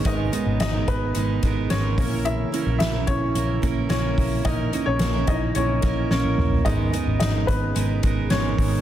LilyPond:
<<
  \new Staff \with { instrumentName = "Upright piano" } { \time 4/4 \key gis \minor \tempo 4 = 109 <dis' dis''>4 <dis' dis''>8 <b b'>4. <cis' cis''>4 | <e' e''>4 <e' e''>8 <cis' cis''>4. <cis' cis''>4 | <dis' dis''>8. <cis' cis''>8. <dis' dis''>8 <cis' cis''>4 <cis' cis''>4 | <dis' dis''>4 <dis' dis''>8 <b b'>4. <cis' cis''>4 | }
  \new Staff \with { instrumentName = "Upright piano" } { \time 4/4 \key gis \minor <gis b ais'>2.~ <gis b ais'>8 <e ais cis'>8 | r1 | r4 <e ais cis'>8 r2 r8 | <gis b ais'>1 | }
  \new Staff \with { instrumentName = "Steel-string acoustic guitar" } { \time 4/4 \key gis \minor <gis, dis gis b dis' ais'>8 <gis b dis' ais'>8. <gis b dis' ais'>8. <gis b dis' ais'>8 <gis b dis' ais'>8 <gis, dis gis b dis' ais'>8 <ais cis' e' ais'>8~ | <ais cis' e' ais'>8 <ais cis' e' ais'>8. <cis' e' ais'>8. <ais cis' e' ais'>8 <ais cis' e' ais'>8 <ais cis' e' ais'>4 | <ais cis' e' ais'>8 <ais cis' e' ais'>8. <cis' e' ais'>8. <ais cis' e' ais'>8 <ais cis' e' ais'>8 <ais cis' e' ais'>4 | <gis, dis gis b dis' ais'>8 <gis b dis' ais'>8. <gis b dis' ais'>8. <gis b dis' ais'>8 <gis b dis' ais'>8 <gis, dis gis b dis' ais'>4 | }
  \new Staff \with { instrumentName = "Analog synth pad" } { \clef bass \time 4/4 \key gis \minor << { <b, gis'>2.~ <b, gis'>8 <cis e>8~ | <cis e>1~ | <cis e>1 | <b, gis'>1 | } \\ { b2.~ b8 cis'8~ | cis'1~ | cis'1~ | cis'1 | } >> }
  \new Staff \with { instrumentName = "Picked electric bass" } { \clef bass \time 4/4 \key gis \minor gis,,8 r16 gis,,16 gis,,8 gis,,8 gis,,8 gis,,8 gis,,8 ais,,8~ | ais,,8 r16 ais,,16 ais,,8 ais,,8 ais,,8 ais,,8 ais,,8 ais,,8 | ais,,8 r16 ais,,16 ais,,8 ais,,8 ais,,8 ais,,8 ais,,8 ais,,8 | gis,,8 r16 gis,,16 gis,,8 gis,,8 gis,,8 gis,,8 gis,,8 gis,,8 | }
  \new DrumStaff \with { instrumentName = "Drums" } \drummode { \time 4/4 <hh bd>8 hh8 <hh sn>8 <hh bd>8 hh8 <hh bd sn>8 <hh sn>8 <hho bd>8 | hh8 hh8 <hh sn>8 <hh bd>8 hh8 <hh bd sn>8 <hh sn>8 <hho bd>8 | <hh bd>8 hh8 <hh sn>8 <hh bd>8 hh8 <hh bd sn>8 sn16 tommh16 toml16 tomfh16 | <hh bd>8 hh8 <hh sn>8 <hh bd>8 hh8 <hh bd>8 <hh sn>8 <hho bd>8 | }
>>